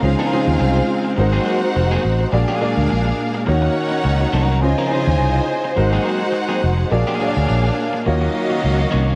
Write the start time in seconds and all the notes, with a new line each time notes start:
0.00 C#2 C#3 G#3 C4 D#4 F4 G#4 F5, muted clean electric guitar stroke
0.04 D#4 F4 C5
0.19 F3 C4 D#4 A#4
0.32 C#3 F3 G#3 C4 D#4 F4 G#4 C5
0.48 D#2, muted clean electric guitar stroke
0.60 C2, muted clean electric guitar stroke
0.76 muted clean electric guitar stroke
1.05 muted clean electric guitar stroke
1.16 G#1 G#3 D#4 F#4 A#4 C5 F#5, muted clean electric guitar stroke
1.33 F#3 A#3 C4 G#4
1.45 F#3 A#3 C4 G#4
1.62 muted clean electric guitar stroke
1.76 F1, muted clean electric guitar stroke
1.91 F#3 A#3 C4 G#4
2.04 A1, muted clean electric guitar stroke
2.21 muted clean electric guitar stroke
2.32 A#1 A#2 G#3 A#3 D4 F#4 G#4 D5 F5, muted clean electric guitar stroke
2.48 F#3 A#3 D4 G#4
2.61 A#2 F#3 A#3 D4 F#4 G#4 D5
2.77 D2, muted clean electric guitar stroke
2.90 A#1, muted clean electric guitar stroke
3.05 muted clean electric guitar stroke
3.35 muted clean electric guitar stroke
3.46 D#2 D#3 A#3 C#4 D#4 F#4 C#5 F#5, muted clean electric guitar stroke
3.62 muted clean electric guitar stroke
3.91 muted clean electric guitar stroke
4.03 C#2, muted clean electric guitar stroke
4.21 muted clean electric guitar stroke
4.33 C2 F#3 C#4 D#4 A#4
4.49 F#3 C#4 D#4 A#4
4.61 C#2 C#3 G#3 C#4 D#4 F4 C5 D#5 G#5, muted clean electric guitar stroke
4.78 F3 C4 D#4 A#4
4.90 C#3 F3 C4 C#4 D#4 E4 G#4 C5
4.97 F4
5.07 D#2, muted clean electric guitar stroke
5.19 C2, muted clean electric guitar stroke
5.36 muted clean electric guitar stroke
5.64 muted clean electric guitar stroke
5.75 G#1 G#3 D#4 F#4 A#4 C5 F#5, muted clean electric guitar stroke
5.93 F#3 A#3 C4 G#4
6.05 F#3 A#3 C4 G#4
6.21 muted clean electric guitar stroke
6.32 muted clean electric guitar stroke
6.48 F#3 A#3 C4 G#4
6.62 F1, muted clean electric guitar stroke
6.78 muted clean electric guitar stroke
6.91 A#1 A#2 A#3 D4 F#4 G#4 D5 F5, muted clean electric guitar stroke
7.07 F#3 A#3 D4 G#4
7.19 A#2 F#3 A#3 D4 F#4 G#4 C#5
7.28 D5
7.36 D2, muted clean electric guitar stroke
7.49 A#1, muted clean electric guitar stroke
7.64 muted clean electric guitar stroke
7.93 muted clean electric guitar stroke
8.06 D#2 D#3 F#3 A#3 C#4 F4 F#4 C#5 D#5 F5, muted clean electric guitar stroke
8.21 muted clean electric guitar stroke
8.50 muted clean electric guitar stroke
8.63 C#2, muted clean electric guitar stroke
8.79 muted clean electric guitar stroke
8.91 C2 D#3 A#3 C#4 F#4
9.08 D#3 A#3 C#4 F#4